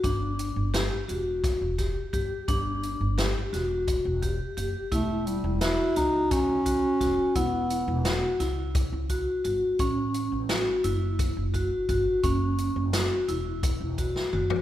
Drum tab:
HH |x-x-x-x-x-x-x-|x-x-x-x-x-x-x-|x-x-x-x-x-x-x-|x-x-x-x-x-x-x-|
SD |----o---o-o---|----o-o-------|----o-o-o---o-|----o-o-------|
T2 |--------------|--------------|--------------|--------------|
FT |--------------|--------------|--------------|--------------|
BD |o-------o-o-o-|o-------o-o---|o-------o-o-o-|o-------o-o---|

HH |x-x-x-x-x-x-x-|x-x-x-x-x-x---|
SD |----o---------|----o------o--|
T2 |--------------|------------o-|
FT |--------------|-------------o|
BD |o-------o-o-o-|o-------o-o---|